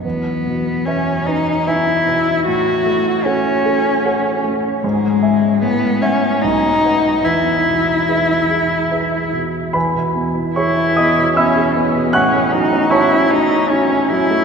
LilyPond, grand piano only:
\new Staff \with { instrumentName = "Grand piano" } { \time 3/4 \key e \major \tempo 4 = 75 << { r2. | r2. | r2. | r2. |
<b' gis'' b''>4 <cis'' cis'''>8 <dis'' dis'''>8 <e'' b'' e'''>4 | <fis'' cis''' fis'''>4 <cis'' a'' cis'''>4. r8 | } \\ { e,8 b,8 <b' e'' gis''>8 b'8 <b' e'' gis''>8 b,8 | a,8 a8 <a' cis'' fis''>8 a'8 <a' cis'' fis''>8 a8 | gis,8 <e'' gis''>8 a,8 <e'' fis''>8 b,,8 <b' fis''>8 | e,8 b,8 <gis' b' e''>8 gis'8 <gis' b' e''>8 b,8 |
e,16 b,16 b16 e'16 gis'16 e'16 b16 b,16 b16 gis'16 b16 b,16 | a,16 a16 fis16 cis'16 fis'16 cis'16 fis'16 cis'16 fis'16 cis'16 fis16 a16 | } >> }